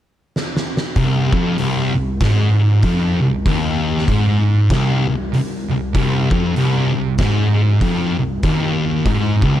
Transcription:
0.36 snare medium
0.56 snare medium
0.77 snare medium
0.96 1.32 C2 loud
0.96 kick medium
0.96 open hi-hat soft
1.33 1.58 F2 loud
1.33 kick loud
1.58 1.94 C2 loud
1.58 open hi-hat medium
1.95 2.16 C2 medium
2.20 2.83 G#2 loud
2.20 kick loud
2.20 snare loud
2.20 open hi-hat medium
2.83 3.19 F2 loud
2.83 kick medium
2.83 open hi-hat medium
3.21 3.41 C2 medium
3.46 4.07 D#2 loud
3.46 kick loud
3.46 open hi-hat medium
3.98 snare soft
4.08 4.70 G#2 loud
4.08 kick loud
4.08 open hi-hat soft
4.70 5.06 C2 loud
4.70 kick loud
4.70 snare loud
4.70 open hi-hat soft
5.08 5.28 C2 medium
5.34 5.63 C2 medium
5.34 open hi-hat soft
5.71 5.90 C2 medium
5.95 6.31 C2 loud
5.95 kick loud
5.95 open hi-hat soft
6.31 6.56 F2 loud
6.31 kick loud
6.56 6.93 C2 loud
6.56 open hi-hat soft
6.94 7.14 C2 medium
7.18 7.81 G#2 loud
7.18 kick loud
7.18 snare loud
7.18 open hi-hat medium
7.81 8.17 F2 medium
7.81 kick loud
7.81 open hi-hat soft
8.19 8.39 C2 medium
8.43 9.06 D#2 loud
8.43 kick loud
8.43 open hi-hat medium
9.06 9.42 G#2 loud
9.06 kick loud
9.06 open hi-hat soft
9.42 9.60 C#2 loud
9.42 kick loud

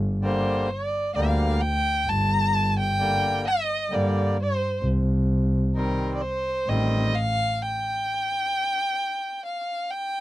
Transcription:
0.00 0.41 G1 loud
0.22 0.68 D3 medium
0.22 0.69 G3 soft
0.22 0.69 A#3 medium
0.22 0.72 C5 medium
0.70 1.14 D5 medium
1.15 1.71 D2 medium
1.15 1.61 D3 medium
1.15 1.62 G3 medium
1.15 1.62 A#3 medium
1.15 1.63 F5 medium
1.61 2.10 G5 loud
2.07 3.18 G1 medium
2.07 2.77 A5 loud
2.79 3.43 G5 loud
2.99 3.45 D3 medium
2.99 3.46 G3 medium
2.99 3.46 A#3 medium
3.48 3.96 D#5 medium
3.90 4.46 G2 medium
3.90 4.37 D3 medium
3.90 4.38 G3 medium
3.90 4.38 A#3 medium
3.90 4.39 D5 medium
4.43 4.83 C5 medium
4.83 5.94 C2 loud
5.75 6.22 D#3 medium
5.75 6.22 G3 medium
5.75 6.23 C4 medium
5.75 6.13 A#4 medium
6.15 6.24 D5 medium
6.22 6.71 C5 medium
6.67 7.23 A1 medium
6.67 7.14 D#3 medium
6.67 7.15 G3 medium
6.67 7.15 C4 medium
6.67 7.16 D#5 medium
7.15 7.64 F5 loud
7.62 9.45 G5 medium
9.45 9.92 F5 medium
9.91 10.20 G5 medium

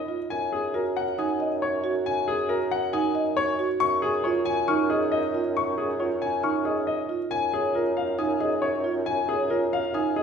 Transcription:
0.00 0.18 F#2 medium
0.00 0.15 D#5 medium
0.08 0.37 F4 soft
0.30 3.68 F#2 medium
0.30 0.59 G#5 medium
0.53 0.81 G#4 medium
0.74 1.03 F#4 medium
0.74 1.03 A#4 medium
0.97 1.25 F#5 medium
1.18 1.47 D#4 medium
1.18 1.47 G#5 medium
1.18 1.47 D#6 medium
1.40 1.69 D#5 medium
1.62 1.91 C#5 medium
1.84 2.12 F#4 medium
2.06 2.35 G#5 medium
2.28 2.56 G#4 medium
2.49 2.78 F#4 medium
2.49 2.78 A#4 medium
2.71 3.00 F#5 medium
2.93 3.22 D#4 medium
2.93 3.22 G#5 medium
2.93 3.22 D#6 medium
3.15 3.44 D#5 medium
3.37 3.66 C#5 medium
3.59 3.88 F#4 medium
3.80 7.19 F#2 medium
3.80 4.09 C#6 medium
4.02 4.31 G#4 medium
4.24 4.53 F4 medium
4.24 4.53 C#5 medium
4.45 4.75 G#5 medium
4.68 4.97 D#4 medium
4.68 4.97 C#6 medium
4.68 4.97 F6 medium
4.90 5.19 G#4 medium
4.90 5.19 D#5 medium
5.12 5.41 D#5 medium
5.34 5.63 F4 medium
5.57 5.85 C#6 medium
5.78 6.07 G#4 medium
6.00 6.28 F4 medium
6.00 6.29 C#5 soft
6.22 6.50 G#5 medium
6.43 6.72 D#4 medium
6.43 6.72 C#6 medium
6.43 6.72 F6 medium
6.65 6.94 G#4 soft
6.65 6.94 D#5 medium
6.87 7.16 D#5 medium
7.09 7.38 F4 soft
7.31 10.23 F#2 medium
7.31 7.60 G#5 medium
7.53 7.82 G#4 medium
7.53 7.82 C#5 medium
7.75 8.04 F4 medium
7.75 8.04 A#4 medium
7.97 8.26 F5 medium
8.19 8.47 D#4 medium
8.19 8.47 G#5 medium
8.19 8.47 D#6 medium
8.40 8.69 G#4 medium
8.40 8.69 D#5 medium
8.62 8.91 C#5 medium
8.84 9.13 F4 medium
9.06 9.35 G#5 medium
9.28 9.57 G#4 medium
9.28 9.57 C#5 medium
9.50 9.79 F4 medium
9.50 9.79 A#4 medium
9.73 10.01 F5 medium
9.94 10.23 D#4 medium
9.94 10.23 G#5 medium
9.94 10.23 D#6 medium
10.16 10.23 G#4 medium
10.16 10.23 D#5 medium

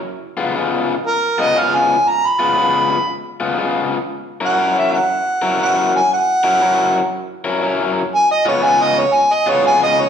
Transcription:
0.37 0.54 C#3 medium
0.37 0.54 G#3 medium
0.37 0.54 B3 loud
0.37 0.55 F4 loud
0.55 0.93 C#3 medium
0.55 0.93 G#3 medium
0.55 0.93 B3 medium
0.55 0.94 F4 medium
1.07 1.43 A#4 loud
1.38 1.55 C#3 medium
1.38 1.55 G#3 medium
1.38 1.55 B3 loud
1.38 1.56 F4 loud
1.38 1.61 D#5 loud
1.56 1.94 C#3 medium
1.56 1.94 G#3 medium
1.56 1.94 B3 medium
1.56 1.95 F4 medium
1.56 1.77 F5 loud
1.76 2.11 G#5 medium
2.09 2.28 A#5 loud
2.26 3.23 B5 loud
2.39 2.56 C#3 medium
2.39 2.57 G#3 medium
2.39 2.57 B3 medium
2.39 2.57 F4 medium
2.57 2.95 C#3 medium
2.57 2.96 G#3 medium
2.57 2.96 B3 medium
2.57 2.96 F4 medium
3.40 3.56 C#3 medium
3.40 3.57 G#3 medium
3.40 3.57 B3 medium
3.40 3.57 F4 loud
3.57 3.96 C#3 medium
3.57 3.96 G#3 medium
3.57 3.96 B3 medium
3.57 3.96 F4 medium
4.41 4.57 F#3 medium
4.41 4.57 C#4 medium
4.41 4.58 E4 medium
4.41 4.58 A#4 loud
4.41 4.76 F#5 medium
4.58 4.96 F#3 medium
4.58 4.97 C#4 medium
4.58 4.97 E4 medium
4.58 4.97 A#4 medium
4.78 4.97 E5 medium
4.95 5.59 F#5 loud
5.42 5.59 F#3 medium
5.42 5.59 C#4 medium
5.42 5.59 E4 loud
5.42 5.60 A#4 medium
5.60 5.98 F#3 medium
5.60 5.98 C#4 medium
5.60 5.98 E4 medium
5.60 5.98 A#4 medium
5.60 5.94 F#5 medium
5.96 6.11 G#5 medium
6.13 7.10 F#5 loud
6.43 6.60 F#3 medium
6.43 6.61 C#4 medium
6.43 6.61 E4 medium
6.43 6.61 A#4 medium
6.61 6.99 F#3 medium
6.61 6.99 C#4 medium
6.61 6.99 E4 medium
6.61 7.00 A#4 medium
7.44 7.61 F#3 medium
7.44 7.62 C#4 medium
7.44 7.62 E4 medium
7.44 7.62 A#4 loud
7.62 8.00 F#3 medium
7.62 8.01 C#4 medium
7.62 8.01 E4 medium
7.62 8.01 A#4 medium
8.15 8.30 G#5 loud
8.31 8.47 D#5 loud
8.45 8.62 C#3 medium
8.45 8.62 G#3 medium
8.45 8.63 B3 medium
8.45 8.63 F4 loud
8.45 8.66 C#5 medium
8.63 9.01 C#3 medium
8.63 9.01 G#3 medium
8.63 9.02 B3 medium
8.63 9.02 F4 medium
8.63 8.83 G#5 loud
8.82 9.01 D#5 loud
8.99 9.17 C#5 loud
9.15 9.34 G#5 loud
9.33 9.51 D#5 loud
9.46 9.63 C#3 medium
9.46 9.63 G#3 medium
9.46 9.63 B3 medium
9.46 9.64 F4 loud
9.46 9.65 C#5 loud
9.64 10.02 C#3 medium
9.64 10.02 G#3 medium
9.64 10.02 B3 medium
9.64 10.03 F4 medium
9.64 9.82 G#5 loud
9.83 10.02 D#5 loud
10.01 10.09 C#5 loud

